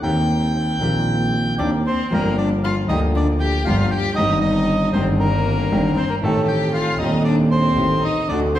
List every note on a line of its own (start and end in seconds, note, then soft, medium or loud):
0.01 0.77 D#2 medium
0.01 0.78 D#2 medium
0.01 0.03 D#3 medium
0.01 0.78 D#3 medium
0.01 0.77 A#3 medium
0.01 0.78 C4 medium
0.01 1.55 G5 medium
0.05 0.78 G4 medium
0.79 1.56 A#1 medium
0.79 1.56 A#2 medium
0.79 1.55 D#3 medium
0.79 1.55 A#3 medium
0.79 1.56 C4 medium
0.79 1.57 G4 medium
1.59 1.82 D#2 medium
1.59 1.82 D#3 medium
1.59 1.81 A#3 soft
1.59 1.81 C4 soft
1.59 1.71 D4 medium
1.59 1.82 G4 medium
1.59 1.71 D5 medium
1.87 2.11 C4 medium
1.87 2.13 C5 medium
2.10 2.86 G1 medium
2.10 2.86 G2 medium
2.10 2.85 F3 medium
2.10 2.86 A#3 medium
2.10 2.36 A#3 medium
2.10 2.87 D4 medium
2.10 2.87 G4 medium
2.10 2.37 A#4 medium
2.38 2.50 D4 soft
2.38 2.49 D5 medium
2.64 2.76 F4 medium
2.64 2.75 F5 medium
2.87 3.63 D2 medium
2.87 3.62 D3 medium
2.87 3.62 F3 medium
2.87 3.62 A#3 medium
2.87 3.63 D4 medium
2.87 3.01 D#4 medium
2.87 3.00 D#5 medium
2.91 3.64 G4 medium
3.15 3.27 D4 medium
3.15 3.28 D5 medium
3.40 3.65 G4 medium
3.40 3.65 G5 medium
3.65 3.88 G1 medium
3.65 3.89 G1 medium
3.65 3.89 G2 medium
3.65 3.89 F3 medium
3.65 3.88 A#3 soft
3.65 3.89 D4 medium
3.65 3.92 F4 medium
3.65 3.89 G4 medium
3.65 3.90 F5 medium
3.91 4.16 G4 medium
3.91 4.16 G5 medium
4.16 4.91 G1 medium
4.16 4.91 G2 medium
4.16 4.90 D#3 medium
4.16 4.91 C4 medium
4.16 4.41 D#4 medium
4.16 4.91 D#4 medium
4.16 4.39 D#5 medium
4.21 4.92 G4 medium
4.41 4.92 D#4 medium
4.41 4.89 D#5 medium
4.92 5.67 G1 medium
4.92 5.67 G2 medium
4.92 5.66 D#3 medium
4.92 5.67 C4 medium
4.92 5.07 C4 medium
4.92 5.68 D4 medium
4.92 5.05 C5 medium
4.96 5.68 G4 medium
5.19 5.93 A#3 medium
5.19 5.99 A#4 medium
5.71 5.93 G1 medium
5.71 5.94 G2 medium
5.71 5.93 D#3 medium
5.71 5.94 C4 medium
5.71 5.93 D4 medium
5.71 5.94 G4 medium
5.96 6.08 C4 medium
5.96 6.10 C5 medium
6.09 6.15 A#3 soft
6.09 6.16 A#4 medium
6.21 6.96 A1 medium
6.21 6.96 A2 medium
6.21 6.95 D#3 medium
6.21 6.96 A3 medium
6.21 6.47 A3 medium
6.21 6.97 C4 medium
6.21 6.47 A4 medium
6.25 6.97 G4 medium
6.48 6.72 G4 medium
6.48 6.72 G5 medium
6.73 6.99 F4 medium
6.73 6.98 F5 medium
6.99 7.73 D#1 medium
6.99 7.73 D#2 medium
6.99 7.74 D#2 medium
6.99 7.73 D#3 medium
6.99 7.73 A3 medium
6.99 7.74 C4 medium
6.99 7.24 D#4 medium
6.99 7.23 D#5 medium
7.03 7.75 G4 medium
7.24 7.38 D4 medium
7.24 7.36 D5 medium
7.51 7.99 C4 medium
7.51 8.04 C5 medium
7.76 7.98 A1 medium
7.76 7.99 A1 medium
7.76 7.99 A2 medium
7.76 7.99 D#3 medium
7.76 7.99 A3 medium
7.76 7.99 C4 medium
7.76 7.99 G4 medium
8.02 8.26 D#4 medium
8.02 8.28 D#5 medium
8.28 8.59 D2 medium
8.28 8.29 D3 medium
8.28 8.59 D3 medium
8.28 8.59 A3 medium
8.28 8.59 C4 medium
8.28 8.41 D4 soft
8.28 8.40 D5 medium
8.32 8.59 F#4 medium
8.55 8.59 C4 medium
8.55 8.59 C5 medium